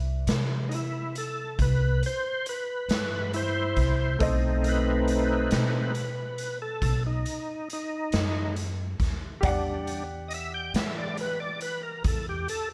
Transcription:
0.00 0.23 C2 medium
0.00 4.15 B4 soft
0.00 4.16 D5 soft
0.00 4.17 E5 medium
0.27 1.54 C3 medium
0.27 snare medium
0.27 closed hi-hat medium
0.69 0.74 D#4 medium
0.69 closed hi-hat medium
0.75 1.15 E4 medium
1.15 1.59 A4 medium
1.15 closed hi-hat medium
1.59 1.99 C2 medium
1.59 2.03 B4 medium
1.59 kick medium
1.59 closed hi-hat medium
2.03 2.47 C5 medium
2.03 closed hi-hat medium
2.46 3.32 B4 medium
2.46 closed hi-hat medium
2.89 3.72 G2 medium
2.89 snare loud
2.89 closed hi-hat medium
3.33 4.17 E4 medium
3.33 4.19 C5 medium
3.33 closed hi-hat medium
3.76 4.17 C2 medium
3.76 kick medium
3.76 snare soft
3.76 closed hi-hat medium
4.19 5.47 B1 medium
4.19 5.53 A3 medium
4.19 5.53 C4 soft
4.19 5.55 D#4 medium
4.19 9.38 A4 soft
4.19 9.39 C5 soft
4.19 9.40 D#5 soft
4.19 kick loud
4.19 closed hi-hat medium
4.64 4.69 A#4 medium
4.64 closed hi-hat medium
4.69 6.58 B4 loud
5.08 closed hi-hat medium
5.51 6.78 B2 medium
5.51 5.92 A3 soft
5.51 5.92 C4 soft
5.51 snare loud
5.51 closed hi-hat medium
5.56 5.93 D#4 soft
5.95 closed hi-hat medium
6.38 closed hi-hat medium
6.62 7.03 A4 medium
6.82 7.22 B1 medium
6.82 kick medium
6.82 closed hi-hat medium
7.06 7.68 D#4 medium
7.26 closed hi-hat medium
7.70 8.55 D#4 medium
7.70 closed hi-hat medium
8.12 8.96 F#2 medium
8.12 snare loud
8.12 closed hi-hat medium
8.56 closed hi-hat medium
9.00 9.40 D#2 medium
9.00 kick medium
9.00 snare soft
9.00 closed hi-hat medium
9.41 10.70 E2 medium
9.41 12.74 G4 medium
9.41 12.74 D5 medium
9.41 12.74 F#5 medium
9.41 kick loud
9.41 closed hi-hat medium
9.47 10.03 G3 medium
9.47 10.03 D4 soft
9.87 closed hi-hat medium
10.28 10.33 D#5 medium
10.28 closed hi-hat soft
10.34 10.53 E5 loud
10.54 10.73 G5 medium
10.74 12.00 E3 medium
10.74 10.96 E5 medium
10.74 snare loud
10.74 closed hi-hat medium
10.98 11.17 D5 medium
11.17 11.39 B4 loud
11.17 closed hi-hat medium
11.40 11.60 D5 medium
11.61 11.82 B4 medium
11.61 closed hi-hat medium
11.83 12.03 A#4 medium
12.04 12.44 E2 medium
12.04 12.26 A4 medium
12.04 kick medium
12.04 closed hi-hat medium
12.29 12.48 G4 medium
12.48 12.69 A4 medium
12.48 closed hi-hat medium

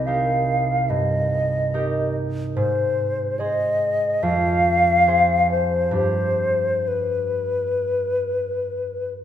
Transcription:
0.00 2.61 C2 soft
0.06 1.73 D#4 soft
0.06 1.73 G4 soft
0.06 1.74 A#4 soft
0.06 0.91 F5 soft
0.90 2.61 G2 soft
0.90 2.16 D#5 soft
1.74 4.27 D#4 soft
1.74 2.61 G4 soft
1.74 2.61 A#4 soft
2.56 4.26 G#2 soft
2.56 3.41 C5 soft
3.39 5.06 G#4 soft
3.39 5.07 C5 soft
3.39 4.25 D#5 medium
4.23 6.00 F2 soft
4.23 5.51 F5 medium
5.07 6.00 G#4 soft
5.07 6.00 C5 soft
5.51 5.95 C5 soft
5.91 9.24 G2 soft
5.91 9.24 D4 soft
5.95 9.24 G4 soft
5.95 6.89 C5 soft
6.88 9.13 B4 soft

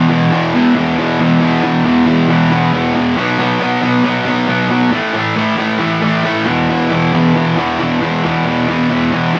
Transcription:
0.09 0.31 E2 medium
0.09 0.30 B2 loud
0.09 0.32 E3 loud
0.31 0.52 E2 medium
0.31 0.53 B2 medium
0.31 0.54 E3 medium
0.53 0.74 E2 loud
0.53 0.74 B2 loud
0.53 0.75 E3 loud
0.75 0.96 E2 loud
0.75 0.98 B2 medium
0.75 0.98 E3 loud
0.98 1.18 E2 medium
0.98 1.19 B2 loud
0.98 1.20 E3 loud
1.20 1.39 E2 medium
1.20 1.40 B2 medium
1.20 1.41 E3 medium
1.41 1.62 E2 loud
1.41 1.62 B2 loud
1.41 1.63 E3 loud
1.63 1.83 E2 medium
1.63 1.84 B2 medium
1.63 1.84 E3 medium
1.84 2.04 E2 loud
1.84 2.05 B2 loud
1.84 2.06 E3 loud
2.06 2.27 E2 medium
2.06 2.28 B2 medium
2.06 2.28 E3 medium
2.29 2.49 E2 loud
2.29 2.51 B2 loud
2.29 2.51 E3 loud
2.51 2.72 E2 medium
2.51 2.72 B2 medium
2.51 2.73 E3 loud
2.73 2.93 E2 medium
2.73 2.94 B2 loud
2.73 2.95 E3 loud
2.94 3.15 E2 medium
2.94 3.16 B2 medium
2.94 3.16 E3 medium
3.17 3.38 B2 medium
3.17 3.39 F#3 loud
3.17 3.39 B3 loud
3.39 3.59 B2 medium
3.39 3.60 F#3 medium
3.39 3.60 B3 medium
3.60 3.80 B2 medium
3.60 3.81 F#3 medium
3.60 3.82 B3 loud
3.81 4.03 B2 medium
3.81 4.03 F#3 medium
3.81 4.04 B3 medium
4.04 4.24 B2 loud
4.04 4.25 F#3 medium
4.04 4.26 B3 loud
4.25 4.46 B2 medium
4.25 4.47 F#3 medium
4.25 4.48 B3 loud
4.48 4.68 B2 loud
4.48 4.69 F#3 loud
4.48 4.70 B3 loud
4.70 4.91 B2 medium
4.70 4.91 F#3 medium
4.70 4.92 B3 medium
4.91 5.12 A2 loud
4.91 5.13 E3 loud
4.91 5.13 A3 loud
5.13 5.34 A2 medium
5.13 5.36 E3 medium
5.13 5.36 A3 medium
5.35 5.56 A2 medium
5.35 5.58 E3 loud
5.35 5.58 A3 loud
5.57 5.77 A2 medium
5.57 5.79 E3 medium
5.57 5.79 A3 medium
5.79 6.01 A2 loud
5.79 6.02 E3 loud
5.79 6.02 A3 loud
6.02 6.23 A2 loud
6.02 6.24 E3 loud
6.02 6.24 A3 loud
6.24 6.45 A2 loud
6.24 6.46 E3 loud
6.24 6.46 A3 loud
6.45 6.69 E2 loud
6.45 6.68 B2 loud
6.45 6.70 E3 loud
6.69 6.89 E2 loud
6.69 6.89 B2 loud
6.69 6.91 E3 loud
6.90 7.13 E2 medium
6.90 7.12 B2 medium
6.90 7.14 E3 loud
7.13 7.34 E2 loud
7.13 7.34 B2 loud
7.13 7.35 E3 loud
7.35 7.56 E2 medium
7.35 7.56 B2 medium
7.35 7.57 E3 medium
7.56 7.78 E2 loud
7.56 7.78 B2 loud
7.56 7.80 E3 loud
7.79 8.01 E2 medium
7.79 8.01 B2 loud
7.79 8.02 E3 loud
8.01 8.23 E2 loud
8.01 8.23 B2 loud
8.01 8.24 E3 loud
8.24 8.44 E2 medium
8.24 8.45 B2 medium
8.24 8.46 E3 medium
8.45 8.67 E2 loud
8.45 8.68 B2 loud
8.45 8.68 E3 loud
8.68 8.89 E2 medium
8.68 8.90 B2 loud
8.68 8.90 E3 medium
8.90 9.10 E2 loud
8.90 9.11 B2 loud
8.90 9.12 E3 loud
9.11 9.33 E2 medium
9.11 9.34 B2 medium
9.11 9.35 E3 medium
9.34 9.40 E2 medium
9.34 9.40 B2 loud
9.34 9.40 E3 loud

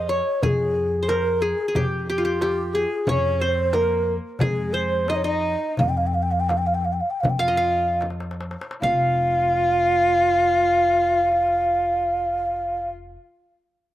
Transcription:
0.00 0.20 F2 medium
0.00 0.33 G#4 medium
0.00 0.12 A#4 medium
0.00 0.15 C5 medium
0.00 0.10 D#5 medium
0.00 0.72 D#5 medium
0.00 0.61 F5 medium
0.09 0.43 C#5 medium
0.09 1.09 C#5 medium
0.42 1.52 F2 loud
0.42 1.41 G#4 medium
0.42 0.47 A#4 medium
0.42 frame drum medium
0.42 darbuka dum medium
0.46 1.10 G#4 medium
0.60 darbuka ka soft
1.03 2.08 C5 medium
1.08 1.43 A#4 medium
1.08 2.22 A#4 medium
1.08 darbuka tek medium
1.08 frame drum medium
1.41 1.75 G#4 medium
1.41 1.68 G#4 medium
1.68 1.82 G#4 medium
1.75 2.84 F2 medium
1.75 2.09 G4 medium
1.75 2.06 G4 medium
1.75 1.80 G#4 medium
1.75 frame drum medium
1.75 darbuka dum medium
1.92 darbuka ka soft
2.08 2.39 G4 medium
2.08 2.24 G4 medium
2.18 3.52 F4 medium
2.25 2.41 G4 medium
2.25 darbuka ka soft
2.41 2.81 G4 medium
2.41 2.75 G4 medium
2.41 darbuka tek medium
2.41 frame drum medium
2.73 3.10 G#4 medium
2.73 3.96 G#4 medium
3.07 4.17 F2 loud
3.07 3.42 C#4 medium
3.07 3.41 C#5 medium
3.07 3.47 C#5 medium
3.07 darbuka dum medium
3.07 frame drum medium
3.24 darbuka ka soft
3.40 3.76 C4 medium
3.40 3.75 C5 medium
3.40 4.47 C5 medium
3.73 4.13 A#3 medium
3.73 4.87 A#4 medium
3.73 4.13 A#4 medium
3.73 darbuka tek medium
3.73 frame drum medium
4.06 darbuka ka soft
4.39 5.54 F2 medium
4.39 5.11 G#3 medium
4.39 4.75 G#4 medium
4.39 5.63 G#4 medium
4.39 darbuka dum medium
4.39 frame drum medium
4.57 darbuka ka soft
4.73 5.11 C5 medium
4.73 5.79 C5 medium
4.90 darbuka ka soft
5.08 5.23 D#4 medium
5.08 5.17 D#5 medium
5.08 5.24 D#5 medium
5.08 darbuka tek medium
5.08 frame drum medium
5.16 5.26 C#5 medium
5.24 5.75 D#4 medium
5.24 6.20 D#5 medium
5.24 5.78 D#5 loud
5.77 6.99 F2 loud
5.77 5.90 F5 medium
5.77 darbuka dum medium
5.77 frame drum medium
5.89 5.98 G5 medium
5.96 6.08 F5 medium
5.96 darbuka ka soft
6.06 6.16 G5 medium
6.13 6.24 F5 medium
6.13 darbuka ka soft
6.22 6.33 G5 medium
6.31 6.41 F5 medium
6.31 darbuka ka soft
6.40 6.50 G5 medium
6.49 6.59 F5 medium
6.49 darbuka tek medium
6.49 frame drum medium
6.57 6.68 G5 medium
6.66 6.76 F5 medium
6.74 6.86 G5 medium
6.85 6.94 F5 medium
6.93 7.02 G5 medium
7.00 7.12 F5 medium
7.05 darbuka ka soft
7.10 7.22 G5 medium
7.20 7.31 F5 medium
7.20 darbuka dum medium
7.24 8.54 F2 medium
7.24 frame drum medium
7.29 7.41 G5 medium
7.39 7.97 F4 medium
7.39 7.57 F5 medium
7.39 8.02 F5 medium
7.39 darbuka ka soft
7.48 8.43 D#5 medium
7.57 8.46 F5 medium
7.82 darbuka ka soft
8.01 darbuka tek medium
8.01 frame drum medium
8.10 darbuka ka medium
8.20 darbuka tek medium
8.31 darbuka ka medium
8.41 darbuka tek medium
8.51 darbuka ka medium
8.61 darbuka tek medium
8.71 darbuka ka medium
8.82 13.15 F1 medium
8.82 12.88 F4 loud
8.82 12.87 F5 medium
8.82 13.16 F5 medium
8.82 frame drum medium
8.82 darbuka dum medium

